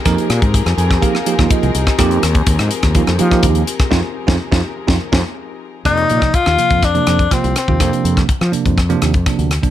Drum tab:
HH |xxxxxxxxx-xxxxxx|xxxxxxxxxxxxxxxx|----------------|xxxxxxxxxxxxxxx-|
SD |r-r--r-r-r-r---r|r-r--r-r-r-r---r|o--o-o--o-o-----|r--r-r--r-r-r-r-|
BD |o--oo--oo--oo--o|o--oo--oo--oo--o|o--o-o--o-o-----|o--oo--oo--oo--o|

HH |xxxxxxxxxxxxxxxx|
SD |r--r-r--r-r-r-r-|
BD |o--oo--oo--oo--o|